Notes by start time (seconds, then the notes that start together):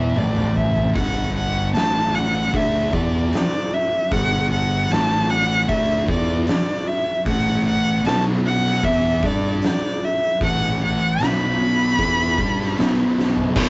Already playing: E2 E3 B3 E4 E5
0.16 A1 A2 E3 A3 D5, mid tom
0.36 mid tom
0.56 E5, floor tom
0.76 floor tom
0.95 G1 G2 D3 G3 F#5, kick, open hi-hat
1.37 F#5
1.74 A1 A2 E3 A3 A5, snare, open hi-hat
2.15 F#5
2.53 D2 D3 A3 D4 E5, kick, open hi-hat
2.92 E2 E3 B3 E4 D5, kick
3.33 D5, snare, open hi-hat
3.74 E5
4.11 G1 G2 D3 G3 F#5, kick, open hi-hat
4.52 F#5
4.90 A1 A2 E3 A3 A5, snare, open hi-hat
5.30 F#5
5.68 D2 D3 A3 D4 E5, kick, open hi-hat
6.08 E2 E3 B3 E4 D5, kick
6.47 D5, snare, open hi-hat
6.88 E5
7.25 A1 A2 E3 A3 F#5, kick, open hi-hat
7.69 F#5
8.05 B1 B2 F#3 B3 A5, snare, open hi-hat
8.46 F#5
8.66 snare
8.83 E2 E3 B3 E4 E5, kick, open hi-hat
9.23 G2 G3 D4 G4 D5, kick
9.62 D5, snare, open hi-hat
10.05 E5
10.41 A1 A2 E3 A3 F#5, kick, open hi-hat
10.85 F#5
11.20 B1 B2 F#3 B3 B5, snare, open hi-hat
11.99 E2 E3 B3 E4, kick, open hi-hat
12.38 G2 G3 D4 G4, kick
12.61 snare
12.78 B1 B2 F#3 B3, snare, open hi-hat
13.19 snare
13.37 floor tom
13.56 B0 B1 F#2 B2, kick, crash